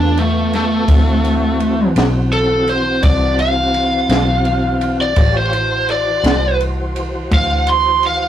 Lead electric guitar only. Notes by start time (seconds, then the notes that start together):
Already playing: D4
0.19 A3
0.55 A3
2.33 A4
2.69 C5
3.04 D5
3.40 F5
5.01 D5
5.38 C5
5.91 D5
7.34 F5
7.70 C6
8.06 F5